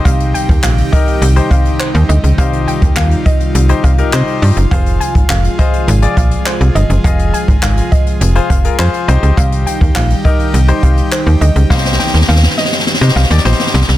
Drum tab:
HH |x-x-x-x-x-x-x-x-x-x-x-x-x-x-x-x-|x-x-x-x-x-x-x-x-x-x-x-x-x-x-o-x-|x-x-x-x-x-x-x-x-x-x-x-x-x-x-x-x-|x-x-x-x-x-x-x-x-x-x-x-x-x-x-x-x-|
CP |--------x---------------x-------|--------x---------------x-------|--------x---------------x-------|--------x---------------x-------|
SD |--------------------------------|--------------------------------|--------------------------------|--------------------------------|
BD |o-----o-----o-------o-----------|o-----o-----o-------o-----------|o-----o-----o-------o-----------|o-----o-----o-------o-----------|

HH |x-x-x-x-x-x-x-x-x-x-x-x-x-x-x-x-|--------------------------------|
CP |--------x---------------x-------|--------------------------------|
SD |--------------------------------|ooooooooooooooooooooooooooooooo-|
BD |o-----o-----o-------o-----------|o-------------------------------|